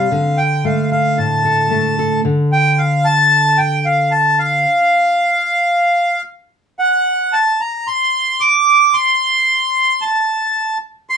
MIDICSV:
0, 0, Header, 1, 3, 480
1, 0, Start_track
1, 0, Tempo, 535714
1, 332, Time_signature, 4, 2, 24, 8
1, 10009, End_track
2, 0, Start_track
2, 0, Title_t, "Accordion"
2, 0, Program_c, 0, 21
2, 0, Note_on_c, 0, 77, 78
2, 336, Note_on_c, 0, 79, 91
2, 351, Note_off_c, 0, 77, 0
2, 581, Note_off_c, 0, 79, 0
2, 585, Note_on_c, 0, 77, 72
2, 807, Note_off_c, 0, 77, 0
2, 821, Note_on_c, 0, 77, 83
2, 1055, Note_on_c, 0, 81, 80
2, 1062, Note_off_c, 0, 77, 0
2, 1974, Note_off_c, 0, 81, 0
2, 2261, Note_on_c, 0, 79, 97
2, 2494, Note_on_c, 0, 77, 79
2, 2501, Note_off_c, 0, 79, 0
2, 2730, Note_on_c, 0, 81, 111
2, 2737, Note_off_c, 0, 77, 0
2, 3206, Note_on_c, 0, 79, 87
2, 3223, Note_off_c, 0, 81, 0
2, 3452, Note_on_c, 0, 77, 81
2, 3454, Note_off_c, 0, 79, 0
2, 3685, Note_on_c, 0, 81, 85
2, 3697, Note_off_c, 0, 77, 0
2, 3933, Note_off_c, 0, 81, 0
2, 3933, Note_on_c, 0, 77, 92
2, 5576, Note_off_c, 0, 77, 0
2, 6085, Note_on_c, 0, 78, 90
2, 6565, Note_on_c, 0, 81, 93
2, 6582, Note_off_c, 0, 78, 0
2, 6812, Note_on_c, 0, 82, 83
2, 6815, Note_off_c, 0, 81, 0
2, 7055, Note_on_c, 0, 84, 98
2, 7059, Note_off_c, 0, 82, 0
2, 7530, Note_on_c, 0, 86, 106
2, 7548, Note_off_c, 0, 84, 0
2, 8007, Note_on_c, 0, 84, 108
2, 8026, Note_off_c, 0, 86, 0
2, 8973, Note_on_c, 0, 81, 80
2, 9000, Note_off_c, 0, 84, 0
2, 9657, Note_off_c, 0, 81, 0
2, 9941, Note_on_c, 0, 84, 111
2, 10009, Note_off_c, 0, 84, 0
2, 10009, End_track
3, 0, Start_track
3, 0, Title_t, "Steel-string acoustic guitar"
3, 0, Program_c, 1, 25
3, 0, Note_on_c, 1, 55, 65
3, 0, Note_on_c, 1, 60, 53
3, 96, Note_off_c, 1, 55, 0
3, 102, Note_on_c, 1, 50, 64
3, 333, Note_off_c, 1, 60, 0
3, 578, Note_on_c, 1, 57, 57
3, 821, Note_on_c, 1, 69, 53
3, 1056, Note_on_c, 1, 45, 53
3, 1286, Note_off_c, 1, 69, 0
3, 1297, Note_on_c, 1, 69, 65
3, 1517, Note_off_c, 1, 57, 0
3, 1528, Note_on_c, 1, 57, 61
3, 1770, Note_off_c, 1, 69, 0
3, 1781, Note_on_c, 1, 69, 60
3, 1979, Note_off_c, 1, 57, 0
3, 1982, Note_off_c, 1, 45, 0
3, 1985, Note_off_c, 1, 69, 0
3, 2003, Note_off_c, 1, 50, 0
3, 2013, Note_on_c, 1, 50, 62
3, 4170, Note_off_c, 1, 50, 0
3, 10009, End_track
0, 0, End_of_file